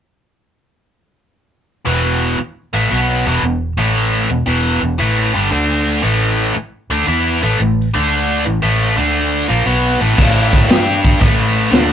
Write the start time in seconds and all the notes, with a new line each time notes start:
1.85 E1 E2 B2 E3
2.39 muted overdriven electric guitar stroke
2.73 A1 A2 E3 A3
2.91 B1 B2 F#3 B3
3.26 E1 E2 B2 E3
3.43 E1 E2 B2
3.77 A1 A2 E3 A3
4.30 E1 E2 B2
4.46 E1 E2 B2 E3
4.81 E1 E2 B2
4.98 A1 A2 E3 A3
5.34 G1 G2 D3 G3
5.51 D2 D3 A3 D4
6.03 A1 A2 E3 A3
6.55 muted overdriven electric guitar stroke, muted fingered electric bass stroke
6.90 D2 D3 A3 D4
7.07 E2 E3 B3 E4
7.43 A1 A2 E3 A3
7.60 A1 A2 E3
7.94 D2 D3 A3 D4
8.46 A1 A2 E3
8.62 A1 A2 E3 A3
8.96 D2 D3 A3 D4
9.48 A#1 A#2 F3 A#3
9.66 B1 B2 F#3 B3
10.01 A1 A2 E3 A3
10.18 A1 A2 E3 A3, kick, crash
10.53 kick, open hi-hat
10.69 G2 G3 D4 G4, snare, open hi-hat
11.05 kick, open hi-hat
11.20 A1 A2 E3 A3, kick, open hi-hat
11.57 open hi-hat
11.71 D2 D3 A3 D4, snare, open hi-hat